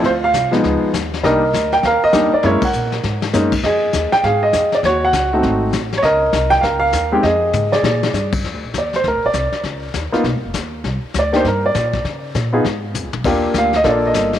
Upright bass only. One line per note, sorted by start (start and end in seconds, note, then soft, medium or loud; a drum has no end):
0.04 0.33 D2 medium
0.34 0.63 C2 medium
0.64 0.81 C#2 medium
0.94 1.23 D#2 medium
1.24 1.53 C2 medium
1.53 1.82 D2 loud
1.83 2.01 D#2 medium
2.03 muted upright bass stroke soft
2.13 2.31 F2 medium
2.33 muted upright bass stroke soft
2.43 2.61 F#2 medium
2.73 3.03 A#2 medium
3.04 3.33 G#2 medium
3.34 3.63 F#2 medium
3.63 3.93 F2 medium
3.93 4.11 D#2 medium
4.12 muted upright bass stroke soft
4.23 4.53 G#2 medium
4.53 4.82 F2 medium
4.83 5.13 D#2 loud
5.13 5.43 C#2 medium
5.43 5.72 G#1 medium
5.73 6.02 A1 medium
6.03 6.32 C#2 loud
6.33 6.62 C2 medium
6.63 6.92 C#2 loud
6.93 7.23 D#2 medium
7.23 7.52 F2 medium
7.53 7.82 G#2 medium
7.82 8.12 A#2 medium
8.13 8.43 G2 medium
8.44 8.54 F2 medium
8.54 8.62 D2 soft
8.63 8.73 A#1 medium
8.74 9.03 D#2 medium
9.04 9.16 D2 medium
9.14 9.24 A#1 soft
9.24 9.33 A1 medium
9.34 9.51 C2 medium
9.64 9.93 C#2 medium
9.94 10.12 D#2 medium
10.14 muted upright bass stroke soft
10.24 10.35 B1 medium
10.35 10.44 G#1 medium
10.45 10.54 F1 medium
10.54 10.83 D#2 medium
10.84 11.02 C2 medium
11.04 muted upright bass stroke soft
11.14 11.44 D2 medium
11.44 11.74 G2 medium
11.75 12.04 A#2 medium
12.04 12.34 C#3 medium
12.34 12.64 A#2 medium
12.65 12.94 G#2 medium
12.94 13.04 F2 medium
13.04 13.14 C#2 medium
13.15 13.24 B1 medium
13.24 13.54 D#2 medium
13.54 13.84 D2 medium
13.84 14.14 A#1 medium
14.15 14.39 G1 medium